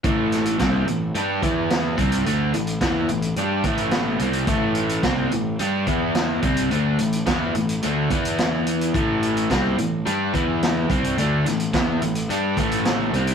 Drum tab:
HH |x-xxx-x-x-x-x-xx|x-xxx-xxx-xxx-xx|x-xxx-x-x-x-x-xx|x-xxx-xxx-xxx-xx|
SD |--o-o-------o---|----o-------o---|----o-------o---|----o-------o---|
BD |o---o-----o---o-|----o-----o-----|o---o-----o---o-|----o-----o-----|

HH |x-xxx-x-x-x-x-xx|x-xxx-xxx-xxx-xx|
SD |----o-------o---|--o-o-------o---|
BD |o---o-----o---o-|----o-----o-----|